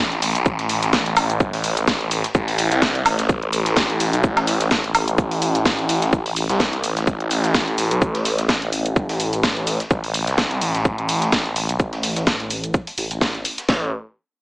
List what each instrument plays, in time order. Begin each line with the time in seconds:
0.12 detuned saw bass A1, closed hi-hat
0.22 detuned saw bass A1, open hi-hat, shaker
0.35 detuned saw bass B1, closed hi-hat, shaker
0.46 detuned saw bass A1, kick, shaker
0.59 snare, closed hi-hat
0.69 snare, open hi-hat, shaker
0.83 detuned saw bass A1, snare, closed hi-hat, shaker
0.93 kick, snare, shaker
1.06 detuned saw bass A1, closed hi-hat
1.17 open hi-hat, high woodblock, shaker
1.30 closed hi-hat, shaker
1.40 detuned saw bass G1, kick, shaker
1.53 detuned saw bass A1, snare, open hi-hat
1.64 open hi-hat, shaker
1.77 closed hi-hat, shaker
1.88 kick, snare, shaker
2.01 detuned saw bass A1, closed hi-hat
2.11 open hi-hat, shaker
2.24 snare, closed hi-hat, shaker
2.35 detuned saw bass A1, kick, shaker
2.48 open hi-hat
2.58 open hi-hat, shaker
2.72 detuned saw bass C2, snare, closed hi-hat, shaker
2.82 kick, snare, shaker
2.95 closed hi-hat
3.06 detuned saw bass A1, open hi-hat, high woodblock, shaker
3.19 detuned saw bass A1, snare, closed hi-hat, shaker
3.29 kick, shaker
3.42 detuned saw bass A1, closed hi-hat
3.53 open hi-hat, shaker
3.66 snare, closed hi-hat, shaker
3.76 kick, snare, shaker
3.90 detuned saw bass A1, closed hi-hat
4.00 detuned saw bass A1, open hi-hat, shaker
4.13 detuned saw bass B1, closed hi-hat, shaker
4.24 detuned saw bass A1, kick, shaker
4.37 snare, closed hi-hat, high woodblock
4.47 snare, open hi-hat, shaker
4.61 detuned saw bass A1, snare, closed hi-hat, shaker
4.71 kick, snare, shaker
4.84 detuned saw bass A1, closed hi-hat
4.95 open hi-hat, high woodblock, shaker
5.08 closed hi-hat, shaker
5.18 detuned saw bass A1, kick, shaker
5.31 closed hi-hat, open hi-hat
5.42 open hi-hat, shaker
5.55 closed hi-hat, shaker
5.66 detuned saw bass A1, kick, snare, shaker
5.79 closed hi-hat
5.89 detuned saw bass A1, open hi-hat, shaker
6.02 snare, closed hi-hat, shaker
6.13 detuned saw bass A1, kick, shaker
6.26 open hi-hat
6.36 open hi-hat, shaker
6.49 detuned saw bass C2, snare, closed hi-hat, shaker
6.60 kick, snare, shaker
6.73 closed hi-hat
6.84 detuned saw bass A1, open hi-hat, shaker
6.97 detuned saw bass A1, snare, closed hi-hat, shaker
7.07 kick, shaker
7.20 detuned saw bass A1, closed hi-hat
7.31 open hi-hat, shaker
7.44 snare, closed hi-hat, shaker
7.54 kick, snare, shaker
7.68 detuned saw bass A1, closed hi-hat
7.78 detuned saw bass A1, open hi-hat, shaker
7.91 detuned saw bass B1, closed hi-hat, shaker
8.02 detuned saw bass A1, kick, shaker
8.15 snare, closed hi-hat
8.25 snare, open hi-hat, shaker
8.38 detuned saw bass A1, snare, closed hi-hat, shaker
8.49 kick, snare, shaker
8.62 detuned saw bass A1, closed hi-hat
8.73 open hi-hat, shaker
8.86 closed hi-hat, shaker
8.96 detuned saw bass G1, kick, shaker
9.09 detuned saw bass A1, snare, open hi-hat
9.20 open hi-hat, shaker
9.33 closed hi-hat, shaker
9.43 kick, snare, shaker
9.57 detuned saw bass A1, closed hi-hat
9.67 open hi-hat, shaker
9.80 snare, closed hi-hat, shaker
9.91 detuned saw bass A1, kick, shaker
10.04 open hi-hat
10.14 open hi-hat, shaker
10.27 detuned saw bass C2, snare, closed hi-hat, shaker
10.38 kick, snare, shaker
10.51 closed hi-hat
10.61 detuned saw bass A1, open hi-hat, shaker
10.75 detuned saw bass A1, snare, closed hi-hat, shaker
10.85 kick, shaker
10.98 detuned saw bass A1, closed hi-hat
11.09 open hi-hat, shaker
11.22 snare, closed hi-hat, shaker
11.32 kick, snare, shaker
11.46 detuned saw bass A1, closed hi-hat
11.56 detuned saw bass A1, open hi-hat, shaker
11.69 detuned saw bass B1, closed hi-hat, shaker
11.80 detuned saw bass A1, kick, shaker
11.93 snare, closed hi-hat
12.03 snare, open hi-hat, shaker
12.16 detuned saw bass A1, snare, closed hi-hat, shaker
12.27 kick, snare, shaker
12.40 detuned saw bass A1, closed hi-hat
12.50 open hi-hat, shaker
12.64 closed hi-hat, shaker
12.74 kick, shaker
12.87 closed hi-hat, open hi-hat
12.98 detuned saw bass A1, open hi-hat, shaker
13.11 detuned saw bass A1, closed hi-hat, shaker
13.21 kick, snare, shaker
13.35 closed hi-hat
13.45 open hi-hat, shaker
13.58 snare, closed hi-hat, shaker
13.69 detuned saw bass A1, kick, snare, open hi-hat